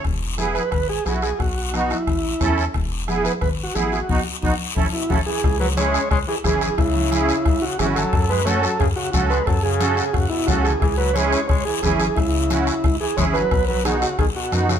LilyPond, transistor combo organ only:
\new Staff \with { instrumentName = "Transistor combo organ" } { \time 4/4 \key cis \minor \tempo 4 = 178 r4 gis'8 b'8 b'8 gis'8 gis'8 gis'8 | fis'4. e'2 r8 | r4 gis'8 b'8 \tuplet 3/2 { b'8. r16 fis'8 } gis'8 fis'8~ | fis'8 r2 e'8 fis'8 gis'8~ |
gis'8 b'8 cis''4 cis''8 gis'8 gis'4 | e'2~ e'8 fis'8 gis'8 a'8~ | a'8 b'8 cis''8 a'8 gis'8 fis'8 fis'8 b'8 | a'8 gis'4. fis'8 e'8 fis'8 gis'8 |
gis'8 b'8 cis''4 cis''8 gis'8 gis'4 | e'2~ e'8 gis'8 cis''8 b'8~ | b'8 b'8 gis'8 fis'8 gis'8 fis'4 fis'8 | }